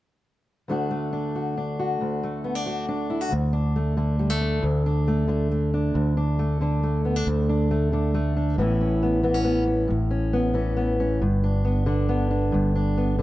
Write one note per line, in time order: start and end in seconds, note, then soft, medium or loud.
0.68 2.00 D2 soft
0.68 3.32 D3 soft
0.68 0.90 A3 soft
0.68 1.12 D4 soft
0.68 1.35 F#4 soft
0.91 2.23 A3 soft
1.13 1.57 D4 soft
1.35 1.79 F#4 soft
1.57 2.44 D4 soft
1.79 2.66 F#4 soft
2.01 3.30 D2 soft
2.23 3.30 A3 soft
2.44 2.55 B3 soft
2.55 2.87 D4 soft
2.66 3.09 F#4 soft
2.88 3.30 D4 soft
3.10 3.21 E4 soft
3.21 3.32 F#4 soft
3.31 4.62 D2 soft
3.31 4.61 D2 medium
3.53 3.97 D4 soft
3.76 4.19 A3 soft
3.97 5.27 D3 soft
3.97 4.41 D4 soft
4.19 4.30 G3 soft
4.30 4.63 A3 soft
4.41 4.86 D4 soft
4.62 5.94 D2 medium
4.62 5.92 D2 medium
4.86 5.29 D4 soft
5.08 5.51 A3 soft
5.28 6.59 D3 soft
5.28 5.73 D4 soft
5.51 6.39 A3 soft
5.74 6.17 D4 soft
5.94 7.26 D2 soft
5.94 7.24 D2 medium
6.17 6.61 D4 soft
6.39 6.83 A3 soft
6.61 7.91 D3 medium
6.61 7.04 D4 soft
6.83 7.70 A3 soft
7.05 7.16 B3 soft
7.16 7.27 D4 soft
7.27 8.56 D2 medium
7.27 8.59 D2 soft
7.49 7.92 D4 soft
7.71 8.14 A3 soft
7.92 8.58 D3 soft
7.92 8.35 D4 soft
8.14 8.59 A3 soft
8.36 8.56 D4 soft
8.58 9.87 A1 medium
8.58 9.86 A2 soft
8.58 9.22 E3 soft
8.58 9.02 B3 soft
8.58 8.80 C#4 soft
8.58 11.23 E4 soft
8.81 9.23 C#4 soft
9.02 9.24 B3 soft
9.23 9.87 E3 medium
9.23 9.34 B3 soft
9.34 9.66 C#4 soft
9.44 9.91 B3 soft
9.67 9.87 C#4 soft
9.88 11.19 A1 medium
9.88 11.20 A2 soft
10.11 10.53 C#4 soft
10.33 10.76 B3 soft
10.54 11.18 E3 medium
10.54 10.99 C#4 soft
10.77 11.64 B3 soft
11.00 11.19 C#4 soft
11.21 12.51 G1 medium
11.21 12.51 G2 medium
11.44 11.86 D4 soft
11.65 12.08 B3 soft
11.86 13.17 D3 medium
11.86 12.30 D4 soft
12.09 12.97 B3 soft
12.31 12.75 D4 soft
12.52 13.22 G1 medium
12.52 13.22 G2 medium
12.75 13.18 D4 soft
12.97 13.22 B3 soft
13.18 13.22 D3 soft
13.18 13.22 D4 soft